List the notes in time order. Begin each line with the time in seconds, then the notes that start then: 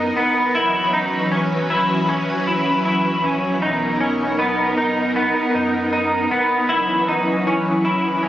Already playing: F#2 B3 D#4 A#4
0.16 E1 B3
0.54 F#1 E3 F#3 C#4 E4 B4
0.93 D#4
1.32 C#4
1.70 F#1 E4
2.09 C#4
2.47 C#2 E4
2.85 E4
3.23 A#1 C#4
3.61 B1 B3 D#4 A#4
4.00 C#4
4.39 B3
4.77 B1 D#4
5.16 B3
5.54 F#2 D#4
5.93 D#4
6.31 E1 B3
6.68 F#1 E3 F#3 C#4 E4 B4
7.08 D#4
7.47 C#4
7.85 F#1 E4
8.23 C#4